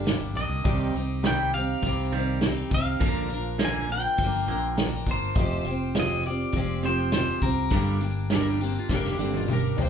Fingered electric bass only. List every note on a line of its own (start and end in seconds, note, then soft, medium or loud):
0.00 0.15 G1 medium
0.19 0.33 G1 medium
0.34 0.48 A#1 medium
0.49 0.63 C2 medium
0.65 0.91 C2 loud
0.94 1.74 C2 medium
1.82 2.62 C2 medium
2.71 2.98 C2 medium
3.00 4.06 A#1 loud
4.18 4.45 G1 medium
4.48 5.01 A#1 medium
5.06 5.33 G1 medium
5.36 5.62 F1 loud
5.65 6.45 F1 medium
6.53 7.33 F1 medium
7.41 7.68 C2 medium
7.71 8.77 G1 loud
8.89 9.16 F1 medium
9.19 9.72 G1 medium
9.79 9.89 C2 medium